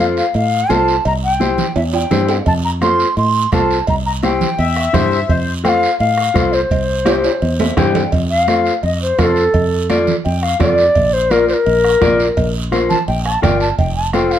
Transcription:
Already playing: F2
0.00 F4 A4 C5, cowbell, high conga, short guiro
0.17 F5, short guiro
0.34 A2 F5, cowbell, high conga, long guiro
0.69 C2 F4 A4 C5 A5, cowbell, high conga, low timbale, short guiro
0.88 short guiro
1.05 C2 A#5, cowbell, high conga, long guiro
1.24 G5
1.40 E4 G4 C5, cowbell, high conga, short guiro
1.58 low conga, short guiro
1.76 E2 E5, cowbell, high conga, high timbale, long guiro
1.93 G5, high timbale
2.11 G2 E4 G4 C5, cowbell, high conga, low conga, low timbale, short guiro
2.29 G5, low timbale, short guiro
2.46 F2 A5, bombo low, cowbell, high conga, long guiro
2.65 A#5
2.82 F4 A4 C5 C6, bombo rim, cowbell, high conga, short guiro
3.00 short guiro
3.17 A2 C6, cowbell, high conga, long guiro
3.52 C2 F4 A4 C5 A5, bombo low, bombo rim, cowbell, high conga, short guiro
3.71 short guiro
3.87 C2 A#5, bombo low, cowbell, high conga, long guiro
4.06 A#5
4.23 E4 G4 C5 G5, bombo rim, cowbell, high conga, short guiro
4.41 low conga, short guiro
4.59 E2 E5, cowbell, high conga, long guiro
4.76 bombo rim
4.93 G2 E4 G4 C5, bombo low, bombo rim, cowbell, high conga, low conga, low timbale, short guiro
5.12 short guiro
5.29 F2 C5, bombo low, cowbell, high conga, long guiro
5.64 F4 A4 C5 G5, bombo rim, cowbell, high conga, short guiro
5.68 F5
5.83 short guiro
5.99 A2 F5, cowbell, high conga, long guiro
6.18 bombo rim
6.34 C2 F4 A4 C5, bombo low, bombo rim, cowbell, high conga, short guiro
6.53 C5, short guiro
6.71 C2, bombo low, cowbell, high conga, long guiro
7.05 E4 G4 C5, bombo rim, cowbell, high conga, high timbale, short guiro
7.24 high timbale, short guiro
7.42 E2, cowbell, high conga, long guiro
7.60 E5, high conga, low timbale
7.77 G2 E4 G4 C5 G5, bombo low, bombo rim, cowbell, low conga, low timbale, short guiro
7.95 low conga, low timbale, short guiro
8.12 F2, bombo low, cowbell, high conga, long guiro
8.30 F5
8.48 F4 A4 C5, bombo rim, cowbell, high conga, short guiro
8.66 short guiro
8.83 F2 D#5, cowbell, high conga, long guiro
9.02 C5
9.19 F2 F4 A4 A#4 C5, bombo low, bombo rim, cowbell, high conga, low timbale, short guiro
9.23 A4
9.36 short guiro
9.54 F2, bombo low, cowbell, high conga, long guiro
9.89 F4 A4 D5, bombo rim, cowbell, high conga, short guiro
10.07 low conga, short guiro
10.25 F2 G5, cowbell, high conga, long guiro
10.43 F5, bombo rim
10.60 F2 F4 A4 D5, bombo low, bombo rim, cowbell, high conga, low conga, low timbale, short guiro
10.78 short guiro
10.95 A#1, bombo low, cowbell, high conga, long guiro
11.13 C5
11.31 F4 A#4 D5, bombo rim, cowbell, high conga, short guiro
11.49 C5, short guiro
11.54 A#4
11.66 A#1, cowbell, high conga, long guiro
11.84 bombo rim
12.01 A#1 F4 A#4 D5, bombo low, bombo rim, cowbell, high conga, low timbale, short guiro
12.20 short guiro
12.37 A#1, bombo low, cowbell, high conga, long guiro
12.72 F4 A#4 C5, bombo rim, cowbell, high conga, short guiro
12.90 A5, low conga, short guiro
13.08 A#1 G5, cowbell, high conga, long guiro
13.25 A5, bombo rim
13.42 G1 F4 A#4 D5 G5, bombo low, bombo rim, cowbell, high conga, low conga, low timbale, short guiro
13.61 A5, short guiro
13.78 F1 G5, bombo low, cowbell, high conga, long guiro
13.96 A5
14.13 F4 A4 C5 G5, bombo rim, cowbell, high conga, short guiro
14.31 F5, short guiro

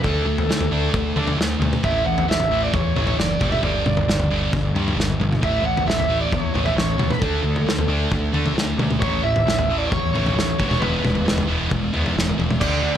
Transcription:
0.03 D2 D3 A3 D4 A4, kick, floor tom
0.25 D2 D3 A3
0.38 floor tom
0.48 D2 D3 A3, snare
0.60 floor tom
0.71 D2 D3 A3 D4
0.94 D2 D3 A3, kick, floor tom
1.16 D3 A3 D4, floor tom
1.27 floor tom
1.37 D2 D3 A3
1.41 snare
1.60 D2 D3 A3, floor tom, mid tom
1.73 mid tom
1.83 A1 A2 E3 A3 E5, kick, floor tom
2.05 A1 A2 E3 F#5
2.18 floor tom
2.28 A1 A2 E3 E5, snare
2.40 floor tom
2.50 A1 A2 E3 A3
2.63 D5
2.73 E2 A2 E3 C#5, kick, floor tom
2.95 A1 A2 E3 A3, floor tom
3.07 C#5, floor tom
3.18 F#1 A2 E3 D5, snare
3.40 G1 G2 D3 G3, kick, floor tom, mid tom
3.52 E5, mid tom
3.62 G1 G2 D3 G3 D5, floor tom
3.86 G1 G2 D3, mid tom
3.97 floor tom
4.08 G1 G2 D3, snare
4.20 floor tom
4.30 G1 G2 D3 G3
4.53 G1 G2 D3, kick, floor tom, mid tom
4.74 G2 D3 G3, floor tom
4.88 floor tom
4.96 G1 G2 D3, snare
5.10 floor tom
5.19 G1 G2 D3, floor tom
5.32 mid tom
5.42 A1 A2 E3 A3 E5, kick, floor tom
5.62 A1 A2 E3 F#5
5.77 floor tom
5.86 A1 A2 E3 E5, snare
6.00 floor tom
6.08 A1 A2 E3 A3
6.21 D5
6.31 E2 A2 E3 C#5, kick, floor tom
6.54 A1 A2 E3 A3, floor tom
6.65 E5, floor tom
6.75 A1 A2 E3 C#5, snare
6.97 E2 A2 E3, floor tom, mid tom
7.10 B4, mid tom
7.20 D2 D3 A3 D4 A4, kick, floor tom
7.43 D2 D3 A3
7.56 floor tom
7.66 D2 D3 A3, snare
7.78 floor tom
7.88 D2 D3 A3 D4
8.11 D2 D3 A3, kick, floor tom
8.33 D3 A3 D4, floor tom
8.46 floor tom
8.55 D2 D3 A3, snare
8.78 D2 D3 A3, floor tom, mid tom
8.91 mid tom
9.00 A1 A2 E3 A3 C#5, kick, floor tom
9.24 A1 A2 E3 E5
9.36 floor tom
9.46 A1 A2 E3, snare
9.59 floor tom
9.68 A1 A2 E3 A3
9.78 D5
9.91 E2 A2 E3 C#5, kick, floor tom
10.13 A1 A2 E3 A3 C#5, floor tom
10.26 floor tom
10.34 A1 A2 E3
10.39 snare
10.59 E1 E3 G#3 B3, kick, floor tom, mid tom
10.69 C#5, mid tom
10.80 E1 E3 G#3 B3 B4, floor tom
11.03 E1 E3 G#3, mid tom
11.15 floor tom
11.25 E1 E3 G#3, snare
11.38 floor tom
11.48 E1 E3 G#3 B3
11.71 E1 E3 G#3, kick, floor tom, mid tom
11.92 E2 E3 G#3 B3, floor tom
12.06 floor tom
12.14 E1 E3 G#3
12.19 snare
12.29 floor tom
12.37 E1 E3 G#3, floor tom
12.51 mid tom
12.60 D2 D3 D5, kick, floor tom, crash
12.83 D2 D3

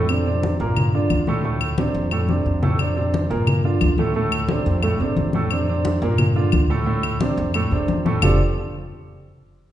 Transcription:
Already playing: F2
0.09 C3 C4 D4, high conga, claves
0.26 C3 C4 D4, high conga
0.43 high conga
0.60 G2 A#2 A#3 A#4, high conga
0.77 high conga, low conga, claves
0.94 D3 D4 F4, high conga
1.10 D2, high conga, claves
1.27 A2 A3 A4, high conga
1.44 A2 A3 A4, high conga
1.61 high conga, claves
1.78 C3 C4 D4, high conga
1.94 F2, high conga
2.11 A2 A3 A4, high conga, claves
2.29 C3 C4 D4, high conga
2.46 F2
2.63 A2 A3 A4, low conga
2.79 C3 C4 D4, high conga, claves
2.96 C3 C4 D4, high conga
3.14 high conga
3.30 G2 A#2 A#3 A#4, high conga
3.47 high conga, low conga, claves
3.64 D3 D4 F4, high conga
3.81 D2, high conga, claves
3.98 A2 A3 A4, high conga
4.15 A2 A3 A4, high conga
4.32 high conga, claves
4.49 C3 C4 D4, high conga
4.66 F2, high conga
4.83 A2 A3 A4, high conga, claves
5.00 E2 C3 C4 D4, high conga
5.16 F2, high conga
5.33 A2 A3 A4, high conga
5.51 C3 C4 D4, high conga, claves
5.68 C3 C4 D4, high conga
5.85 high conga
6.02 G2 A#2 A#3 A#4, high conga
6.18 high conga, low conga, claves
6.36 D3 D4 F4, high conga
6.52 D2, high conga, claves
6.70 A2 A3 A4
6.86 A2 A3 A4, high conga
7.03 high conga, claves
7.21 C3 C4 D4, high conga
7.37 F2, high conga
7.54 A2 A3 A4, high conga, claves
7.71 E2 C3 C4 D4, high conga
7.88 F2, high conga
8.06 A2 A3 A4, high conga
8.22 F1 F3 C4 D4 F4 G4 A4, low conga, claves

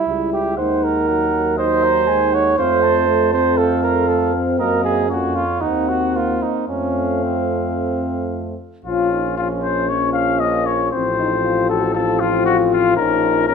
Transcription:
Already playing: E4
0.07 C#2 G3 E4 E5
0.33 G4
0.57 D#2 G#3 D#4 C5 F#5
0.84 A#4
1.08 F#3 F#5
1.33 F#3
1.57 D#4 C5 D#5
1.84 A#5
2.08 G#3 G#5
2.33 C#5 F#5
2.58 F2 A3 C4 C5 F5
2.82 A5
3.08 A3
3.33 C4 C5
3.57 A4 F5
3.83 A#4
4.08 A3 A4
4.35 C4
4.59 F#2 A#3 A#4 D#5
4.84 G#4
5.10 F2 A#3 C#4 F#4 C#5
5.36 F4
5.61 D#2 C4 D#4 F#5
5.89 F#4
6.16 A#3 F4
6.42 D#4
6.68 F2 A3 C4 C#4 F5
7.23 C4
8.85 A#1 F3 C#4 F4
9.12 D#4
9.37 F3 C#4 F4
9.63 C5
9.89 F3 C#4 C#5
10.13 F5
10.40 A#3 D#5
10.66 C#5
10.92 A1 F3 C4 C5
11.19 D#4
11.45 F4
11.70 F#4 A4
11.94 F3 C4 F4 A4
12.20 F4
12.46 F#4
12.73 F4
12.97 A#1 F3 C#4 D#4 A#4
13.48 F3 C#4 A#4

